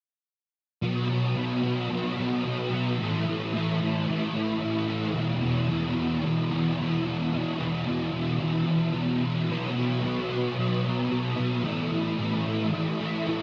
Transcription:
distorted electric guitar
0.82 B2 F#3 B3
1.09 F#3 B3
1.35 B2 F#3 B3
1.62 F#3 B3
1.89 B2 F#3 B3
2.16 B3
2.20 F#3
2.44 B2 F#3 B3
2.70 F#3 B3
2.99 A2 E3 A3
3.25 E3 A3
3.53 A2 E3 A3
3.80 E3 A3
4.07 A2 E3 A3
4.34 E3 A3
4.61 A2 E3 A3
4.87 E3 A3
5.13 E2 B2 E3
5.41 B2 E3
5.68 E2 B2 E3
5.95 B2 E3
6.23 E2 B2 E3
6.50 B2 E3
6.78 E2 B2 E3
7.07 B2 E3
7.33 E2 B2 E3
7.58 B2 E3
7.86 E2 B2
7.90 E3
8.12 B2 E3
8.39 E2 B2 E3
8.65 B2 E3
8.93 E2 B2 E3
9.22 B2 E3
9.48 B2 F#3 B3
9.75 F#3 B3
10.03 B2 F#3 B3
10.30 F#3 B3
10.56 B2 F#3 B3
10.85 F#3 B3
11.09 B2 F#3 B3
11.36 F#3 B3
11.63 A2 E3 A3
11.92 E3 A3
12.18 A2 E3 A3
12.45 E3 A3
12.72 A2 E3 A3
13.00 E3 A3
13.27 A2 E3 A3

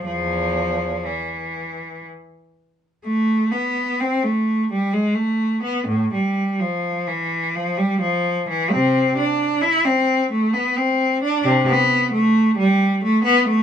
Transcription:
cello
0.05 E2 F3
1.06 E3
3.04 A3
3.51 B3
4.00 C4
4.24 A3
4.72 G3
4.93 G#3
5.14 A3
5.63 B3
5.87 A2
6.13 G3
6.60 F3
7.07 E3
7.55 F3
7.78 G3
8.01 F3
8.49 E3
8.72 C3 C4
9.17 D4
9.61 E4
9.85 C4
10.32 A3
10.54 B3
10.77 C4
11.23 D4
11.45 C3
11.68 B3
12.12 A3
12.58 G3
13.04 A3
13.25 B3
13.48 A3

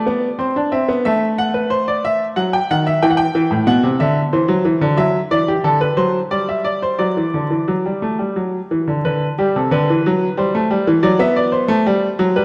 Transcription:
grand piano
Already playing: D5
0.06 B3
0.39 C4 C5
0.56 D4
0.72 C4 E5
0.88 B3
1.05 A3 E5
1.38 F#5
1.54 B4
1.70 C5
1.88 D5
2.05 E5
2.36 F#3 F#5
2.53 G5
2.71 D#3 F#5
2.87 E5
3.02 E3 G5
3.10 F#5
3.17 G5
3.35 E3
3.51 A2
3.67 B2 F#5
3.83 C3
4.00 D3 E5
4.33 E3 C5
4.48 F#3
4.65 E3
4.81 D3
4.97 F#3 E5
5.31 E3 D5
5.48 G4
5.64 D3 A4
5.81 B4
5.97 F#3 C5
6.31 G3 D5
6.49 E5
6.64 D5
6.82 C5
6.99 F#3 D5
7.17 E3
7.34 D3
7.51 E3
7.68 F#3
7.85 G3
8.02 A3
8.19 G3
8.36 F#3
8.71 E3
8.88 D3
9.05 D3 B4
9.38 G3 G4
9.56 C3 A4
9.71 D3 B4
9.90 E3
10.06 F#3
10.37 G3 C5
10.55 A3
10.70 G3
10.87 E3
11.03 F#3 D5
11.19 B3 E5
11.36 D5
11.52 C5
11.68 A3
11.86 G3
12.19 F#3
12.36 G3 B4

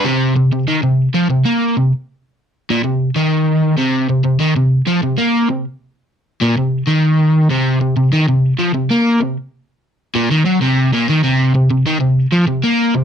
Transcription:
overdriven electric guitar
0.05 C3
0.36 C3
0.53 C3
0.68 D#3
0.83 C3
1.14 F3
1.30 C3
1.45 A#3
1.77 C3
2.70 A#2
2.84 C3
3.16 D#3
3.78 C3
4.09 C3
4.24 C3
4.40 D#3
4.56 C3
4.87 F3
5.03 C3
5.18 A#3
5.49 C3
6.41 A#2
6.57 C3
6.87 D#3
7.50 C3
7.81 C3
7.97 C3
8.13 D#3
8.28 C3
8.59 F3
8.74 C3
8.91 A#3
9.21 C3
10.15 A#2
10.31 D#3
10.46 F#3
10.62 C3
10.93 A#2
11.09 D#3
11.24 C3
11.55 C3
11.70 C3
11.86 D#3
12.01 C3
12.32 F3
12.47 C3
12.63 A#3
12.95 C3

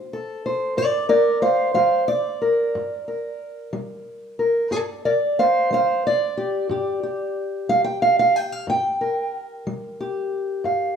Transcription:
steel-string acoustic guitar
Already playing: F#4 C5
0.13 A4
0.46 C5
0.77 G2 A#4 D5
1.09 A#4 D5
1.42 C5 F5
1.74 G3 C5 F5
2.08 D5
2.42 A#4
2.75 G2
3.08 A#4
3.73 G3
4.39 A#4
4.71 G2 A#4 D5
5.05 A#4 D5
5.39 C5 F5
5.71 G3 C5 F5
6.07 D5
6.37 G4
6.69 G2 G4
7.03 G4
7.69 G3 F5
7.84 G5
8.02 F5
8.19 F5
8.36 G5
8.52 F5
8.67 G2 G5
9.01 A#4
9.67 G3
10.00 G4
10.64 G2 F5

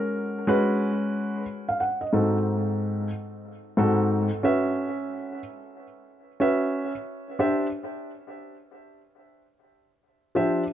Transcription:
grand piano
Already playing: G#3 C#4 F#4 A#4
0.47 G#3 C#4 F#4 B4
1.69 F5
1.80 F#5
2.01 D#5
2.13 G#2 C4 D#4 F#4 A4
3.77 G#2 C4 D#4 F#4 A4
4.43 C#4 F#4 B4 E5
6.40 C#4 F#4 B4 E5
7.39 D4 G4 C5 E5
10.35 F3 D4 G4 C5 E5

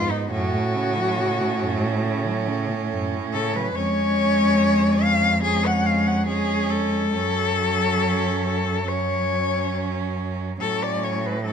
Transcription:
cello
Already playing: F2 G#2 B3 F4
0.10 G#2 D#4
0.31 F#2 A2 C#4 F#4
0.53 A2
0.75 C#3
0.97 F#3
1.19 C#3
1.41 A2
1.62 F#2
1.84 A2
2.05 C#3
2.26 F#3
2.48 C#3
2.70 A2
2.92 F#2
3.13 A2
3.34 C#3 A4
3.55 F#3 B4
3.75 F2 G#3 C#4 C#5
5.02 F5
5.44 G#3 C#4 G#4
5.67 F#5
5.86 F5
6.07 F#5
6.27 G#3 C#4 G#4
6.70 A4
7.14 F#2 F#3 C#4
8.45 A4
8.87 F#3 C#4 C#5
10.60 A2 F#3 C#4 A4
10.83 D5
11.04 C#5
11.26 B4
11.46 F#3 C#4 A4

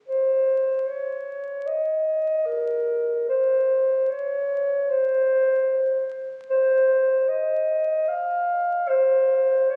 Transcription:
clarinet
0.08 C5
0.87 C#5
1.66 D#5
2.46 A#4
3.29 C5
4.10 C#5
4.90 C5
6.50 C5
7.28 D#5
8.08 F5
8.88 C5
9.70 C#5

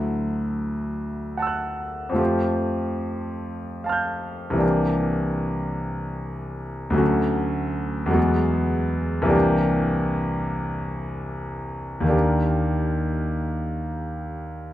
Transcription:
grand piano
Already playing: D2 F#3 A3 E4 F#4
1.37 F#5 A5
1.42 E6
1.47 F#6
2.09 F2 F3
2.14 A3 F4 G4
3.84 F5 A5
3.89 F6 G6
4.50 C2 E3
4.56 A#3 D4 G4
6.90 D2 F#3 A3
6.96 C#4 F#4
8.06 E2 F#3 G#3
8.11 B3 F#4
9.22 C2 E3 A#3
9.28 D4 G4
12.00 D#2 D#3
12.05 A#3 D4
12.10 G4

